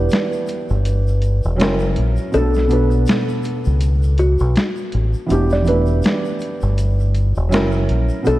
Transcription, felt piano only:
0.00 1.61 E3 medium
0.00 1.61 B3 medium
0.00 1.61 D4 medium
0.00 1.61 G4 medium
1.56 2.23 F#3 medium
1.56 2.24 C#4 medium
1.60 2.25 E4 medium
1.60 2.26 A#4 medium
2.32 2.65 B2 medium
2.32 2.66 B3 medium
2.32 2.67 D4 medium
2.37 2.68 A4 medium
2.67 3.98 B2 medium
2.67 4.00 B3 medium
2.67 4.00 D4 medium
2.73 4.02 B4 medium
5.26 5.61 E3 medium
5.26 5.61 B3 medium
5.26 5.62 D4 medium
5.32 5.63 G4 medium
5.62 6.94 E3 medium
5.62 6.95 B3 medium
5.66 6.96 D4 medium
5.66 6.97 E4 medium
7.49 8.16 F#3 medium
7.49 8.17 C#4 medium
7.49 8.17 E4 medium
7.54 8.18 A#4 loud
8.23 8.39 B2 medium
8.23 8.39 B3 medium
8.23 8.39 D4 medium
8.28 8.39 A4 medium

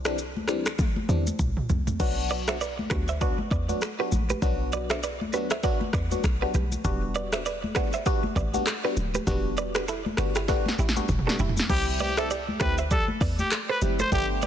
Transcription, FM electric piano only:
0.05 0.17 E3 medium
0.05 0.17 G3 medium
0.05 0.17 C4 medium
0.05 0.18 D4 medium
0.48 0.65 E3 medium
0.48 0.65 G3 medium
0.48 0.65 C4 medium
0.48 0.65 D4 medium
1.09 1.26 E3 medium
1.09 1.26 G3 medium
1.09 1.26 C4 medium
1.09 1.26 D4 medium
2.00 2.56 F#3 medium
2.00 2.56 B3 medium
2.00 2.56 D4 medium
2.00 2.57 F#4 loud
2.90 3.07 F#3 medium
2.90 3.08 B3 medium
2.90 3.08 D4 medium
2.90 3.08 F#4 medium
3.21 3.38 F#3 medium
3.21 3.38 B3 medium
3.21 3.38 D4 medium
3.21 3.38 F#4 loud
3.69 3.81 F#3 medium
3.69 3.81 B3 medium
3.69 3.81 D4 medium
3.69 3.81 F#4 medium
3.99 4.11 F#3 medium
3.99 4.11 B3 medium
3.99 4.12 D4 medium
3.99 4.12 F#4 medium
4.42 4.99 F#3 medium
4.42 4.99 B3 medium
4.42 4.99 D4 medium
4.42 4.99 F#4 loud
5.33 5.50 F#3 medium
5.33 5.50 B3 medium
5.33 5.50 D4 medium
5.33 5.50 F#4 medium
5.63 5.80 F#3 medium
5.63 5.80 B3 medium
5.63 5.80 D4 medium
5.63 5.81 F#4 loud
6.11 6.23 F#3 medium
6.11 6.24 B3 medium
6.11 6.24 D4 medium
6.11 6.24 F#4 medium
6.41 6.54 F#3 medium
6.41 6.54 B3 medium
6.41 6.54 D4 medium
6.41 6.54 F#4 medium
6.84 7.41 G3 medium
6.84 7.41 B3 medium
6.84 7.41 D4 medium
6.84 7.41 F#4 loud
7.75 7.92 G3 medium
7.75 7.92 B3 medium
7.75 7.93 D4 medium
7.75 7.93 F#4 medium
8.06 8.23 G3 medium
8.06 8.23 B3 medium
8.06 8.23 D4 medium
8.06 8.23 F#4 loud
8.54 8.66 G3 medium
8.54 8.66 B3 medium
8.54 8.66 D4 medium
8.54 8.66 F#4 medium
8.84 8.96 G3 medium
8.84 8.96 B3 medium
8.84 8.96 D4 medium
8.84 8.97 F#4 medium
9.27 9.84 G3 medium
9.27 9.84 B3 medium
9.27 9.84 D4 medium
9.27 9.84 F#4 loud
10.18 10.35 G3 medium
10.18 10.35 B3 medium
10.18 10.35 D4 medium
10.18 10.35 F#4 medium
10.48 10.65 G3 medium
10.48 10.65 B3 medium
10.48 10.65 D4 medium
10.48 10.65 F#4 loud
10.96 11.08 G3 medium
10.96 11.08 B3 medium
10.96 11.08 D4 medium
10.96 11.09 F#4 medium
11.26 11.39 G3 medium
11.26 11.39 B3 medium
11.26 11.39 D4 medium
11.26 11.39 F#4 medium
11.69 12.13 G3 medium
11.69 12.13 C4 medium
11.69 12.13 E4 medium
11.69 12.13 G4 loud
12.17 12.30 G3 medium
12.17 12.30 C4 medium
12.17 12.30 E4 medium
12.17 12.30 G4 medium
12.60 12.77 G3 medium
12.60 12.77 C4 medium
12.60 12.77 E4 medium
12.60 12.77 G4 medium
13.82 13.98 G3 medium
13.82 13.99 C4 medium
13.82 13.99 E4 medium
13.82 13.99 G4 medium
14.12 14.47 A3 medium
14.12 14.47 B3 medium
14.12 14.47 D4 medium
14.12 14.47 G4 loud

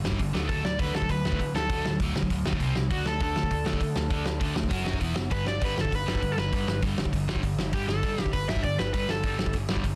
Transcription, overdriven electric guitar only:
0.49 0.63 A4 loud
0.65 0.80 D5 loud
0.81 0.94 B4 medium
0.96 1.10 A4 medium
1.10 1.55 B4 medium
1.56 1.97 A4 medium
2.92 3.07 F#4 loud
3.07 3.21 A4 loud
3.23 4.99 A4 medium
5.32 5.46 B4 medium
5.48 5.63 D5 loud
5.64 5.79 B4 medium
5.81 5.93 A4 medium
5.95 6.33 B4 medium
6.32 6.38 A4 medium
6.38 6.80 B4 medium
7.74 7.88 G4 medium
7.88 8.30 A4 medium
8.33 8.47 B4 medium
8.49 8.64 E5 medium
8.64 8.79 D5 medium
8.79 8.93 B4 medium
8.94 9.10 B4 loud
9.10 9.55 A4 medium

